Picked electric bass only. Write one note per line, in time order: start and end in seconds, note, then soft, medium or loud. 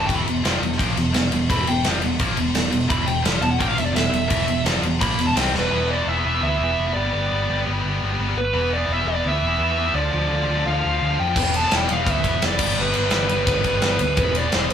0.09 0.25 E1 loud
0.27 0.43 E1 medium
0.44 0.61 F1 medium
0.61 0.78 E1 medium
0.79 0.96 A#1 medium
0.97 1.13 E1 medium
1.17 1.32 E1 medium
1.34 1.49 E1 medium
1.50 1.66 E1 loud
1.69 1.85 E1 medium
1.87 2.02 F1 loud
2.04 2.20 E1 medium
2.20 2.37 A#1 loud
2.38 2.54 E1 medium
2.55 2.72 E1 medium
2.73 2.89 E1 medium
2.90 3.07 E1 loud
3.08 3.23 E1 medium
3.24 3.41 F1 loud
3.41 3.59 E1 medium
3.61 3.77 A#1 loud
3.77 3.93 E1 medium
3.94 4.11 E1 medium
4.13 4.30 E1 loud
4.30 4.47 E1 loud
4.49 4.65 E1 medium
4.65 4.82 F1 loud
4.82 4.99 E1 medium
5.02 5.18 A#1 loud
5.19 5.34 E1 medium
5.35 5.52 C2 loud
5.54 5.70 E1 loud
5.71 6.01 E1 loud
6.07 6.22 E1 loud
6.25 6.40 E1 loud
6.42 6.57 D2 medium
6.59 6.74 E1 loud
6.78 6.93 F1 medium
6.96 7.10 G1 medium
7.14 7.28 G1 loud
7.32 7.46 G1 medium
7.50 7.64 G1 medium
7.68 7.82 G1 loud
7.84 7.99 G1 medium
8.02 8.16 G1 loud
8.19 8.34 G1 loud
8.35 8.50 G1 loud
8.53 8.83 E1 loud
8.88 9.03 E1 loud
9.05 9.20 E1 loud
9.25 9.39 D2 medium
9.43 9.57 E1 loud
9.59 9.89 E2 loud
9.94 10.09 D2 loud
10.13 10.28 D2 medium
10.30 10.45 D2 loud
10.48 10.63 D2 loud
10.66 10.80 D2 loud
10.85 10.99 D2 loud
11.02 11.16 D2 loud
11.20 11.34 F2 medium
11.36 11.66 E1 loud
11.73 11.87 E1 loud
11.90 12.04 E1 medium
12.07 12.21 D2 loud
12.24 12.39 E1 loud
12.44 12.58 F1 medium
12.59 12.74 G1 loud
12.80 12.93 G1 loud
12.97 13.11 G1 loud
13.13 13.27 G1 loud
13.31 13.45 G1 loud
13.47 13.62 G1 medium
13.65 13.80 G1 medium
13.82 13.97 G1 loud
14.00 14.15 D2 loud
14.18 14.47 E1 loud
14.54 14.69 E1 loud
14.70 14.73 E1 medium